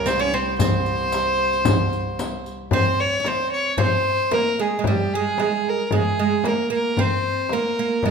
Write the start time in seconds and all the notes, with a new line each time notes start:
Already playing: C2
0.06 C4 C5, riq, darbuka tek, frame drum
0.20 C#4 C#5
0.34 C4 C5
0.59 C4 C5, riq, frame drum, darbuka dum
0.86 riq, darbuka ka
1.12 riq, darbuka tek, frame drum
1.41 darbuka ka
1.53 riq, darbuka ka
1.65 riq, frame drum, darbuka dum
1.93 riq, darbuka ka
2.19 riq, darbuka tek, frame drum
2.46 riq, darbuka ka
2.71 C4 C5, frame drum, darbuka dum
3.00 C#5, darbuka ka
3.20 C#4
3.25 C4 C5, darbuka tek, frame drum
3.53 C#5
3.77 C4 C5, darbuka dum, frame drum
4.31 A#3 A#4, darbuka tek, frame drum
4.58 G#3 G#4, darbuka ka
4.79 G#3
4.84 G3 G4, frame drum, darbuka dum
5.11 G#3 G#4, darbuka ka
5.38 G#3, darbuka tek, frame drum
5.69 A#4
5.87 A#4, frame drum
5.91 G#3 G#4, darbuka dum
6.19 G#3
6.44 A#3, darbuka tek, frame drum
6.48 A#4
6.70 A#3, darbuka ka
6.74 A#4
6.97 C4 C5, frame drum, darbuka dum
7.25 darbuka ka
7.49 A#3 A#4, darbuka tek, frame drum
7.79 A#3
8.03 G#3 G#4, darbuka dum, frame drum